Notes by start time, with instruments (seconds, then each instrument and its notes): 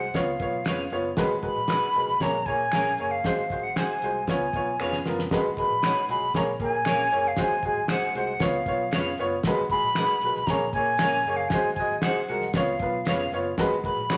Already playing: fingered electric bass C2, flute F#5
0.14 fingered electric bass C#2, upright piano B3 F4 C#5, flute F5, kick, snare, closed hi-hat
0.40 fingered electric bass B1, upright piano B3 F4 C#5, kick, closed hi-hat
0.65 fingered electric bass F1, upright piano B3 F4 C#5, clean electric guitar C#4 G#4 B4 F5, finger snap, snare, closed hi-hat
0.90 fingered electric bass F#1, upright piano B3 F4 C#5, closed hi-hat
1.17 fingered electric bass G#1, upright piano G#3 F#4 B4, kick, snare, closed hi-hat
1.42 upright piano G#3 F#4 B4, flute B5, kick, closed hi-hat
1.57 fingered electric bass A#1
1.68 upright piano G#3 F#4 B4, clean electric guitar D#4 G#4 B4 F#5, finger snap, snare, closed hi-hat
1.94 fingered electric bass B1, upright piano G#3 F#4 B4, closed hi-hat
2.08 fingered electric bass B1, snare
2.20 fingered electric bass A#1, upright piano A#3 G#4 C#5, flute A#5, kick, snare, closed hi-hat
2.46 fingered electric bass A#2, upright piano A#3 G#4 C#5, flute G#5, kick, closed hi-hat
2.72 fingered electric bass A#1, upright piano A#3 G#4 C#5, clean electric guitar C#4 G#4 A#4 F5, finger snap, snare, closed hi-hat
2.98 fingered electric bass F#1, upright piano A#3 G#4 C#5, closed hi-hat
3.11 flute F5
3.24 fingered electric bass G#1, upright piano G#3 F#4 C5, kick, snare, closed hi-hat
3.50 upright piano G#3 F#4 C5, kick, closed hi-hat
3.63 fingered electric bass G#1, flute F#5
3.76 upright piano G#3 F#4 C5, clean electric guitar D#4 G#4 C5 F#5, flute G#5, finger snap, snare, closed hi-hat
3.89 muted fingered electric bass stroke
4.02 fingered electric bass C2, upright piano G#3 F#4 C5, closed hi-hat
4.27 fingered electric bass C#2, upright piano B3 F4 C#5, flute G#5, kick, snare, closed hi-hat
4.53 fingered electric bass B1, upright piano B3 F4 C#5, kick, closed hi-hat
4.80 fingered electric bass F1, upright piano B3 F4 C#5, clean electric guitar C#4 G#4 B4 F5, finger snap
4.93 snare
5.06 fingered electric bass F#1, upright piano B3 F4 A#4, snare
5.19 snare
5.31 fingered electric bass G#1, upright piano G#3 F#4 B4, kick, snare, closed hi-hat
5.57 upright piano G#3 F#4 B4, flute B5, kick, closed hi-hat
5.71 fingered electric bass A#1
5.83 upright piano G#3 F#4 C#5, clean electric guitar D#4 G#4 B4 F#5, finger snap, snare, closed hi-hat
6.09 fingered electric bass B1, upright piano G#3 F#4 G#4, flute B5, closed hi-hat
6.20 fingered electric bass B1
6.34 fingered electric bass A#1, upright piano A#3 G#4 C#5, flute A#5, kick, snare, closed hi-hat
6.60 fingered electric bass A#2, upright piano A#3 G#4 A#4, flute G#5, kick, closed hi-hat
6.85 fingered electric bass A#1, upright piano A#3 G#4 C#5, clean electric guitar C#4 G#4 A#4 F5, finger snap, snare, closed hi-hat
7.10 fingered electric bass F#1, upright piano A#3 G#4 C#5, closed hi-hat
7.28 flute F5
7.36 fingered electric bass G#1, upright piano G#3 F#4 C5, flute G#5, kick, snare, closed hi-hat
7.63 upright piano G#3 F#4 G#4, kick, closed hi-hat
7.68 flute G#5
7.76 fingered electric bass G#1
7.88 upright piano G#3 F#4 C5, clean electric guitar D#4 G#4 C5 F#5, flute F#5, finger snap, snare, closed hi-hat
8.02 muted fingered electric bass stroke
8.15 fingered electric bass C2, upright piano G#3 F#4 C5, flute F#5, closed hi-hat
8.40 fingered electric bass C#2, upright piano B3 F4 C#5, flute F5, kick, snare, closed hi-hat
8.66 fingered electric bass B1, upright piano B3 F4 C#5, kick, closed hi-hat
8.91 fingered electric bass F1, upright piano B3 F4 C#5, clean electric guitar C#4 G#4 B4 F5, finger snap, snare, closed hi-hat
9.17 fingered electric bass F#1, upright piano B3 F4 C#5, closed hi-hat
9.43 fingered electric bass G#1, upright piano G#3 F#4, kick, snare, closed hi-hat
9.47 upright piano B4
9.70 upright piano G#3 F#4 G#4, flute B5, kick, closed hi-hat
9.83 fingered electric bass A#1
9.95 upright piano G#3 F#4 B4, clean electric guitar D#4 G#4 B4 F#5, finger snap, snare, closed hi-hat
10.21 fingered electric bass B1, upright piano G#3 F#4 B4, closed hi-hat
10.35 fingered electric bass B1, snare
10.46 fingered electric bass A#1, upright piano A#3 G#4 C#5, flute A#5, kick, snare, closed hi-hat
10.73 fingered electric bass A#2, upright piano A#3 G#4 C#5, flute G#5, kick, closed hi-hat
10.98 fingered electric bass A#1, upright piano A#3 G#4, clean electric guitar C#4 G#4 A#4 F5, finger snap, snare, closed hi-hat
11.02 upright piano C#5
11.24 fingered electric bass F#1, upright piano A#3 G#4, closed hi-hat
11.29 upright piano C#5
11.37 flute F5
11.49 fingered electric bass G#1, flute G#5, kick, snare, closed hi-hat
11.53 upright piano G#3 F#4 C5
11.74 flute G#5, kick, closed hi-hat
11.79 upright piano G#3 F#4 D#5
11.90 fingered electric bass G#1
12.01 upright piano G#3 F#4, clean electric guitar D#4 G#4 C5 F#5, flute F#5, finger snap, snare, closed hi-hat
12.06 upright piano C5
12.17 muted fingered electric bass stroke
12.27 fingered electric bass C2, upright piano G#3 F#4 A#4, flute F#5, closed hi-hat
12.42 snare
12.48 flute F#5
12.53 fingered electric bass C#2, upright piano B3 F4 C#5, flute F5, kick, snare, closed hi-hat
12.79 fingered electric bass B1, upright piano B3 F4 B4, kick, closed hi-hat
13.05 fingered electric bass F1, upright piano B3 F4 C#5, clean electric guitar C#4 G#4 B4 F5, finger snap, snare, closed hi-hat
13.31 fingered electric bass F#1, upright piano B3 F4 C#5, closed hi-hat
13.58 fingered electric bass G#1, upright piano G#3 F#4 B4, kick, snare, closed hi-hat
13.84 upright piano G#3 F#4 B4, flute B5, kick, closed hi-hat
13.97 fingered electric bass A#1
14.09 upright piano G#3 F#4 C#5, clean electric guitar D#4 G#4 B4 F#5, finger snap, snare, closed hi-hat